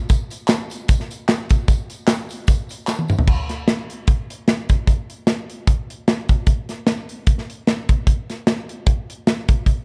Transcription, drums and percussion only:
0.09 kick, closed hi-hat, tambourine
0.30 closed hi-hat, tambourine
0.48 snare, clap, closed hi-hat, tambourine
0.70 closed hi-hat, tambourine
0.88 kick, closed hi-hat, tambourine
1.00 snare
1.10 closed hi-hat, tambourine
1.28 snare, clap, closed hi-hat, tambourine
1.49 kick, closed hi-hat, tambourine
1.68 kick, closed hi-hat, tambourine
1.90 closed hi-hat, tambourine
2.07 snare, clap, closed hi-hat, tambourine
2.29 closed hi-hat, tambourine
2.47 kick, closed hi-hat, tambourine
2.69 closed hi-hat, tambourine
2.87 snare, clap, tambourine
2.99 high tom
3.08 mid tom, tambourine
3.19 floor tom
3.28 kick, crash
3.49 snare, closed hi-hat
3.68 snare, closed hi-hat
3.90 closed hi-hat
4.07 kick, closed hi-hat
4.30 closed hi-hat
4.48 snare, closed hi-hat
4.69 kick, closed hi-hat
4.87 kick, closed hi-hat
5.10 closed hi-hat
5.27 snare, closed hi-hat
5.50 closed hi-hat
5.67 kick, closed hi-hat
5.90 closed hi-hat
6.08 snare, closed hi-hat
6.29 kick, closed hi-hat
6.47 kick, closed hi-hat
6.69 snare, closed hi-hat
6.87 snare, closed hi-hat
7.09 closed hi-hat
7.27 kick, closed hi-hat
7.38 snare
7.50 closed hi-hat
7.67 snare, closed hi-hat
7.89 kick, closed hi-hat
8.07 kick, closed hi-hat
8.30 snare, closed hi-hat
8.47 snare, closed hi-hat
8.69 closed hi-hat
8.86 kick, closed hi-hat
9.10 closed hi-hat
9.27 snare, closed hi-hat
9.48 kick, closed hi-hat
9.66 kick, closed hi-hat

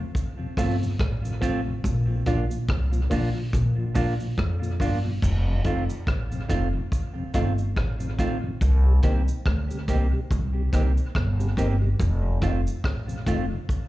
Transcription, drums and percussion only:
0.15 kick, cabasa
0.57 kick, cross-stick, open hi-hat, cabasa
0.83 cabasa
0.99 kick, cross-stick, hi-hat pedal
1.25 cabasa
1.42 kick, closed hi-hat, cabasa
1.84 kick, cabasa
2.26 kick, closed hi-hat, cabasa
2.51 cabasa
2.69 kick, cross-stick
2.93 cabasa
3.11 kick, open hi-hat, cabasa
3.53 kick, hi-hat pedal, cabasa
3.95 kick, open hi-hat, cabasa
4.20 cabasa
4.38 kick, cross-stick, hi-hat pedal
4.63 cabasa
4.80 kick, open hi-hat, cabasa
5.22 kick, crash, cabasa
5.65 kick, closed hi-hat, cabasa
5.90 cabasa
6.07 kick, cross-stick
6.32 cabasa
6.50 kick, closed hi-hat, cabasa
6.92 kick, cabasa
7.34 kick, closed hi-hat, cabasa
7.58 cabasa
7.76 kick, cross-stick
8.00 cabasa
8.19 kick, closed hi-hat, cabasa
8.61 kick, cabasa
9.03 kick, closed hi-hat, cabasa
9.28 cabasa
9.46 kick, cross-stick
9.71 cabasa
9.88 kick, closed hi-hat, cabasa
10.31 kick, cabasa
10.73 kick, cross-stick, closed hi-hat, cabasa
10.97 cabasa
11.15 kick, cross-stick
11.40 cabasa
11.57 kick, closed hi-hat, cabasa
12.00 kick, cabasa
12.42 kick, closed hi-hat, cabasa
12.67 cabasa
12.84 kick, cross-stick
13.09 cabasa
13.26 kick, closed hi-hat, cabasa
13.69 kick, cabasa

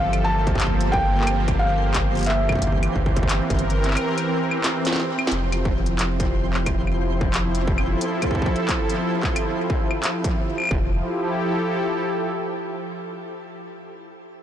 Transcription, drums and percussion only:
0.13 closed hi-hat, claves
0.47 kick, closed hi-hat
0.55 kick
0.60 clap, closed hi-hat
0.67 kick
0.81 closed hi-hat
0.93 kick
1.21 clap
1.27 closed hi-hat, claves
1.48 kick, closed hi-hat, claves
1.94 kick, clap, closed hi-hat
2.15 closed hi-hat
2.17 closed hi-hat
2.19 closed hi-hat
2.21 closed hi-hat
2.23 closed hi-hat
2.25 closed hi-hat
2.26 clap, closed hi-hat
2.49 kick, claves
2.52 kick
2.56 kick
2.59 kick, closed hi-hat
2.62 kick
2.67 kick
2.72 kick
2.78 kick
2.83 closed hi-hat, claves
2.96 kick
3.06 kick
3.17 kick, closed hi-hat
3.23 kick
3.29 clap, closed hi-hat
3.50 kick, closed hi-hat
3.59 closed hi-hat
3.70 closed hi-hat
3.84 clap, closed hi-hat
3.87 clap
3.90 clap
3.94 clap, closed hi-hat, claves
4.18 closed hi-hat, claves
4.51 claves
4.64 snare, clap, closed hi-hat
4.85 snare, closed hi-hat
4.93 snare
4.96 snare
5.00 snare
5.19 claves
5.27 snare
5.32 closed hi-hat
5.52 closed hi-hat, claves
5.65 kick
5.86 closed hi-hat
5.99 clap, closed hi-hat
6.20 kick, closed hi-hat
6.54 clap
6.66 kick, closed hi-hat, claves
6.87 claves
7.21 kick
7.34 clap, closed hi-hat
7.55 closed hi-hat
7.68 kick
7.78 claves
8.01 closed hi-hat
8.22 kick, closed hi-hat, claves
8.24 kick
8.31 kick
8.35 kick
8.42 kick
8.46 kick
8.56 closed hi-hat
8.69 kick, clap, closed hi-hat
8.90 closed hi-hat
9.23 kick, clap
9.36 closed hi-hat, claves
9.70 kick
9.91 claves
10.03 clap, closed hi-hat
10.24 kick, closed hi-hat
10.58 claves
10.60 claves
10.62 claves
10.64 claves
10.65 claves
10.67 claves
10.69 kick, claves

